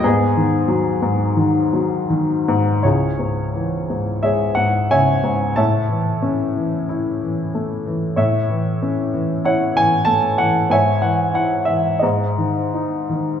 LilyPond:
<<
  \new Staff \with { instrumentName = "Upright piano" } { \time 4/4 \key gis \minor \tempo 4 = 91 << { gis'2. r4 | \key cis \minor cis''2 e''8 fis''8 gis''4 | a''2. r4 | e''2 fis''8 gis''8 a''8 fis''8 |
gis''8 fis''8 fis''8 e''8 dis''4. r8 | } \\ { b2. r4 | <e' gis'>2 <gis' cis''>4 <cis'' e''>4 | <cis'' e''>2. r4 | cis''2 cis''2 |
<cis'' e''>2 <gis' bis'>2 | } >> }
  \new Staff \with { instrumentName = "Upright piano" } { \clef bass \time 4/4 \key gis \minor gis,8 dis8 fis8 gis,8 dis8 fis8 dis8 gis,8 | \key cis \minor cis,8 gis,8 e8 gis,8 gis8 gis,8 cis8 gis,8 | a,8 e8 cis'8 e8 e'8 e8 a8 e8 | a,8 e8 cis'8 e8 e'8 e8 a8 e8 |
gis,8 e8 e'8 e8 gis,8 dis8 dis'8 dis8 | }
>>